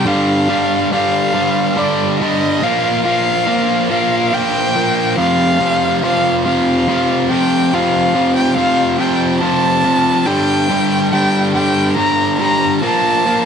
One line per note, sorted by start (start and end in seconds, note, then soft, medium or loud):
0.06 0.48 G2 medium
0.06 0.48 D3 loud
0.06 0.48 G3 loud
0.06 0.92 F5 medium
0.49 0.90 G2 medium
0.49 0.91 D3 medium
0.49 0.92 G3 medium
0.92 1.32 G2 medium
0.92 1.33 D3 loud
0.92 1.34 G3 medium
0.92 1.80 F5 loud
1.33 1.75 G2 medium
1.33 1.76 D3 loud
1.33 1.76 G3 loud
1.76 2.19 G2 medium
1.76 2.19 D3 medium
1.76 2.20 G3 loud
1.76 2.19 D5 medium
2.20 2.60 G2 loud
2.20 2.60 D3 medium
2.20 2.60 G3 loud
2.20 2.64 D#5 medium
2.62 3.03 A#2 medium
2.62 3.05 F3 loud
2.62 3.04 A#3 loud
2.62 3.05 F5 loud
3.05 3.45 A#2 medium
3.05 3.47 F3 loud
3.05 3.47 A#3 medium
3.05 3.86 F5 loud
3.47 3.89 A#2 medium
3.47 3.90 F3 medium
3.47 3.90 A#3 loud
3.90 4.32 A#2 medium
3.90 4.33 F3 medium
3.90 4.33 A#3 loud
3.90 4.35 F5 medium
4.33 4.74 A#2 medium
4.33 4.76 F3 medium
4.33 4.76 A#3 medium
4.33 5.18 G5 loud
4.76 5.15 A#2 medium
4.76 5.18 F3 medium
4.76 5.16 A#3 loud
5.17 5.60 F2 medium
5.17 5.60 C3 loud
5.17 5.61 F3 medium
5.17 5.99 F5 loud
5.60 6.03 F2 medium
5.60 6.03 C3 loud
5.60 6.04 F3 loud
6.02 6.44 F2 medium
6.02 6.45 C3 medium
6.02 6.46 F3 loud
6.02 6.42 F5 loud
6.45 6.86 F2 medium
6.45 6.87 C3 medium
6.45 6.89 F3 loud
6.45 7.26 F5 medium
6.88 7.28 F2 medium
6.88 7.29 C3 loud
6.88 7.30 F3 loud
7.30 7.72 F2 medium
7.30 7.73 C3 loud
7.30 7.74 F3 loud
7.30 7.75 G5 loud
7.73 8.14 F2 loud
7.73 8.14 C3 medium
7.73 8.15 F3 loud
7.73 8.36 F5 loud
8.15 8.55 F2 medium
8.15 8.56 C3 loud
8.15 8.58 F3 loud
8.37 8.56 G5 loud
8.57 8.98 F2 medium
8.57 8.98 C3 medium
8.57 9.00 F3 loud
8.57 8.97 F5 loud
8.99 9.40 F2 loud
8.99 9.41 C3 medium
8.99 9.42 F3 loud
8.99 9.39 G5 medium
9.41 9.83 F2 medium
9.41 9.83 C3 loud
9.41 9.84 F3 loud
9.41 10.28 A5 loud
9.84 10.25 F2 loud
9.84 10.25 C3 loud
9.84 10.27 F3 loud
10.26 10.68 G2 medium
10.26 10.69 D3 medium
10.26 10.69 G3 loud
10.26 11.11 G5 loud
10.69 11.11 G2 medium
10.69 11.12 D3 medium
10.69 11.12 G3 loud
11.12 11.53 G2 medium
11.12 11.54 D3 loud
11.12 11.54 G3 loud
11.12 11.52 G5 loud
11.54 11.95 G2 medium
11.54 11.96 D3 medium
11.54 11.96 G3 loud
11.54 11.94 G5 loud
11.96 12.38 G2 medium
11.96 12.39 D3 loud
11.96 12.39 G3 medium
11.96 12.38 A#5 loud
12.39 12.80 G2 loud
12.39 12.81 D3 loud
12.39 12.81 G3 loud
12.39 12.80 A#5 loud
12.83 13.25 A#2 medium
12.83 13.26 F3 loud
12.83 13.26 A#3 medium
12.83 13.45 A5 loud
13.26 13.45 A#2 loud
13.26 13.45 F3 medium
13.26 13.45 A#3 loud